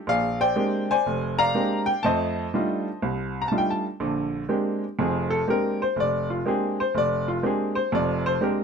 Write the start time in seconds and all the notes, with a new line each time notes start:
0.07 A#1 G#4 D5 F5
0.41 C5 D5 G5
0.56 G#3 A#3 C4 D4 G4
0.91 C5 D5 G#5
1.06 F1
1.39 D5 F5 A#5
1.55 G#3 A#3 C4 D4 G4
1.86 G5
2.03 F2 A3 C5 D#5 A5
2.54 G3 A3 D4 D#4 F4
3.02 C2
3.42 A#5
3.48 G3 A3 A5
3.52 D4 D#4 F4
3.58 G5
3.71 A5
4.00 A#1 D3
4.49 G#3 A#3 C4 D4 G4
4.99 F1 F2 G#4
5.30 A4
5.48 G#3 A#3 C4 D4 G4 A#4
5.82 C5
5.96 F1 D5
6.30 F4
6.46 G#3 A#3 C4 D4 G4 G#4
6.80 C5
6.95 F1 D5
7.28 F4
7.43 G#3 A#3 C4 D4 G4 G#4
7.75 C5
7.92 F1 F2 D5
8.26 C5
8.41 G#3 A#3 C4 D4 G4 A#4